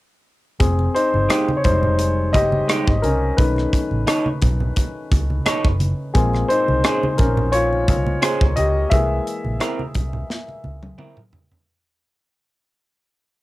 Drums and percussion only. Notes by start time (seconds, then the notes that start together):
0.60 kick, closed hi-hat
0.79 muted conga
0.96 closed hi-hat
1.14 high conga
1.30 cross-stick, closed hi-hat, muted conga
1.48 high conga
1.64 kick, closed hi-hat, low conga
1.83 low conga
1.98 closed hi-hat, muted conga
2.33 kick, closed hi-hat, high conga
2.52 high conga
2.69 cross-stick, closed hi-hat
2.87 kick, muted conga
3.03 closed hi-hat, high conga
3.38 kick, closed hi-hat, muted conga
3.56 cross-stick, muted conga
3.73 kick, closed hi-hat
3.91 high conga
4.07 cross-stick, closed hi-hat
4.26 high conga
4.42 kick, closed hi-hat, low conga
4.60 low conga
4.76 kick, closed hi-hat, muted conga
5.12 kick, closed hi-hat, high conga
5.30 high conga
5.46 cross-stick, closed hi-hat, muted conga
5.65 kick, muted conga
5.80 closed hi-hat, high conga
6.15 kick, closed hi-hat, muted conga
6.33 cross-stick, muted conga
6.50 closed hi-hat
6.68 high conga
6.84 cross-stick, closed hi-hat, muted conga
7.03 high conga
7.18 kick, closed hi-hat, low conga
7.37 low conga
7.53 closed hi-hat
7.73 muted conga
7.88 kick, closed hi-hat, high conga
8.07 high conga
8.22 cross-stick, closed hi-hat
8.41 kick, muted conga
8.57 closed hi-hat, high conga
8.91 kick, closed hi-hat, muted conga
9.27 closed hi-hat
9.44 high conga
9.60 cross-stick, closed hi-hat, muted conga
9.79 high conga
9.95 kick, closed hi-hat, low conga
10.13 low conga
10.30 snare
10.49 muted conga
10.64 high conga
10.82 high tom, high conga
10.98 mid tom
11.17 mid tom, muted conga
11.33 floor tom, high conga
11.52 floor tom